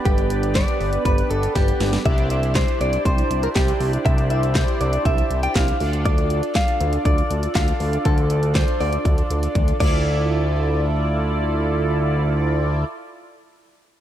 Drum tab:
CC |----------------|----------------|----------------|----------------|
HH |xxxxxxoxxxxxxxox|xxxxxxxxxxxxxxox|xxxxxxxxxxxxxxox|xxxxxxxxxxxxxxox|
CP |----x-----------|----x-------x---|----x-------x---|----x-------x---|
SD |----o-------o-oo|----o-------o---|----o-------o---|----o-------o---|
T1 |----------------|----------------|----------------|----------------|
BD |o---o---o---o---|o---o---o---o---|o---o---o---o---|o---o---o---o---|

CC |--------------x-|----------------|----------------|
HH |xxxxxxoxxxxxxx--|----------------|----------------|
CP |----x-----------|----------------|----------------|
SD |----o-----------|----------------|----------------|
T1 |------------o---|----------------|----------------|
BD |o---o---o---o-o-|----------------|----------------|